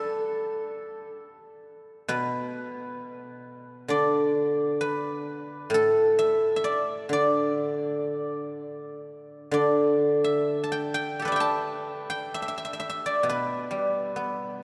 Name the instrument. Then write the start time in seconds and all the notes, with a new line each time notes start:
guzheng
Already playing: G3 G4 A4 B4
2.08 B2 B4
3.88 D3 D5
4.81 B4
5.70 A2
5.74 A4
6.19 E5
6.56 E5
6.64 D5
7.09 D3 D5
9.51 D3 D5
10.24 E5
10.64 A5
10.72 G5
10.94 G5
11.19 G4 A4
11.25 B4 D5
11.32 E5 G5
11.40 A5
12.10 G5
12.34 E5
12.42 E5
12.48 E5
12.58 E5
12.65 E5
12.73 E5
12.80 E5
12.90 E5
13.06 D5
13.23 B2
13.29 B4
13.71 G3
14.16 B3